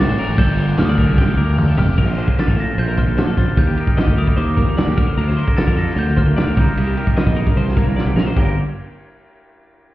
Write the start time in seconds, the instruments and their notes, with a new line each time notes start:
Already playing: overdriven electric guitar D3
0.00 overdriven electric guitar A3 C4 F#4, glockenspiel A6
0.09 fingered electric bass A1, clean electric guitar C5
0.16 overdriven electric guitar A3 C4 F#4, clean electric guitar A#4, crash
0.29 fingered electric bass A1
0.36 fingered electric bass G1, overdriven electric guitar G2 D3 G3 A#3 D4 G4, clean electric guitar A4, glockenspiel G6, kick, crash
0.49 clean electric guitar A#4
0.56 overdriven electric guitar G3 A#3 D4 G4, clean electric guitar C5, crash
0.76 fingered electric bass D2, overdriven electric guitar G3 A#3 D4 G4, clean electric guitar A#4, glockenspiel F6, snare, crash
0.85 glockenspiel D#6
0.89 clean electric guitar D5, glockenspiel F6
0.96 overdriven electric guitar G2 D3 G3 A#3 D4 G4, clean electric guitar A#4, kick, crash
1.08 fingered electric bass C2
1.16 overdriven electric guitar G3 A#3 D4 G4, clean electric guitar G4, glockenspiel G6, kick, snare
1.28 fingered electric bass D2, clean electric guitar A4
1.36 fingered electric bass D2, overdriven electric guitar G2 D3 G3 A#3 D4 G4, clean electric guitar A#4
1.56 overdriven electric guitar G3 A#3 D4 G4, clean electric guitar G4, mid tom
1.68 clean electric guitar A4
1.76 fingered electric bass F1, overdriven electric guitar G3 A#3 D4 G4, clean electric guitar G4, glockenspiel F6, floor tom
1.98 fingered electric bass A#1, clean electric guitar A#2 A#4, kick, crash
2.07 clean electric guitar C5
2.17 clean electric guitar D4 C5, ride
2.28 clean electric guitar F4, kick
2.37 clean electric guitar G4 A4, glockenspiel A6, snare, ride
2.47 fingered electric bass A1, clean electric guitar A4 A#4, kick
2.58 clean electric guitar F3 A4, glockenspiel A#6, ride
2.78 fingered electric bass A#1, clean electric guitar F4 C5, glockenspiel G6, ride
2.88 clean electric guitar A#4
2.97 clean electric guitar A#2 C5, glockenspiel F6, kick, ride
3.07 fingered electric bass A#1, clean electric guitar A4
3.17 clean electric guitar D4 C5, glockenspiel F6, snare, ride
3.27 fingered electric bass A#1, clean electric guitar A4
3.37 fingered electric bass A#1, clean electric guitar C5, glockenspiel A6, kick, snare, ride
3.57 fingered electric bass D#2, clean electric guitar D#3 A#4, glockenspiel G6, kick, ride
3.67 clean electric guitar G4
3.77 clean electric guitar D#4 G4, ride
3.87 glockenspiel F6, kick
3.97 clean electric guitar G4 D#5, snare, ride
4.07 fingered electric bass D2, kick
4.17 clean electric guitar G3 A#4, glockenspiel D#6, ride
4.27 kick
4.37 fingered electric bass D#2, clean electric guitar D#4 C5, glockenspiel D6, ride
4.57 clean electric guitar A#2 A#4, kick, ride
4.67 fingered electric bass D#2
4.77 clean electric guitar D4 D5, snare, ride
4.87 fingered electric bass D#2, clean electric guitar G4, snare
4.97 fingered electric bass D2, clean electric guitar D3 A#4, glockenspiel F6, kick, ride
5.07 clean electric guitar C5
5.17 fingered electric bass D2, clean electric guitar D4 A#4, ride
5.27 clean electric guitar F4 C5, snare
5.37 clean electric guitar A#4 C5, ride
5.48 kick
5.57 clean electric guitar G3 A4, glockenspiel A6, snare, ride
5.67 fingered electric bass F2, clean electric guitar A#4, kick
5.77 clean electric guitar F4 A4, glockenspiel A#6, ride
5.89 snare
5.96 fingered electric bass D2, clean electric guitar D3 C5, glockenspiel G6, ride
6.07 clean electric guitar A#4, snare
6.17 clean electric guitar A#3 C5, glockenspiel F6, kick, ride
6.27 fingered electric bass D2, clean electric guitar A#4
6.36 clean electric guitar D5, snare, ride
6.47 fingered electric bass D2, clean electric guitar A#4
6.57 fingered electric bass C2, clean electric guitar C3 G3 A#3 D#4 A#4 C5, glockenspiel G6, kick, ride
6.77 fingered electric bass C2, clean electric guitar D#4 A#4, ride
6.87 clean electric guitar G4
6.97 clean electric guitar G4 A#4, ride
7.07 kick
7.17 clean electric guitar G3 D#5, snare, ride
7.27 fingered electric bass A#1, kick
7.36 clean electric guitar D#4 A#4, ride
7.47 kick
7.55 fingered electric bass C2, clean electric guitar G2 C5, ride
7.68 snare
7.76 clean electric guitar A#3 A#4, kick, ride
7.86 fingered electric bass C2
7.96 clean electric guitar D5, snare
8.05 fingered electric bass C2, clean electric guitar G4
8.15 fingered electric bass A#1, clean electric guitar C3 A#4, snare
8.27 clean electric guitar C5
8.36 fingered electric bass G1, clean electric guitar G2 G3 A#3 F4 G4 A#4, kick, crash